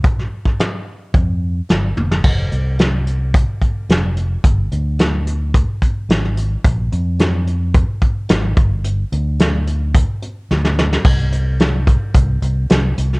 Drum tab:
CC |----------------|x---------------|----------------|----------------|
HH |x---x---x---x---|--x-x-x-x-x-x-x-|x-x-x-x-x-x-x-x-|x-x-x-x-x-x-x-x-|
SD |-o-oo-------o--o|----o-------o---|----o-------oo--|----o-------o---|
T1 |--------------o-|----------------|----------------|----------------|
BD |o--o----o-------|o-------o-o-----|o-------o-o-----|o-------o-o---o-|

CC |----------------|x---------------|
HH |x-x-x-x-x-x-----|-xx-x-x-x-x-x-x-|
SD |----o-------oooo|----o-------o--o|
T1 |----------------|----------------|
BD |--------o-------|o-----o-o-------|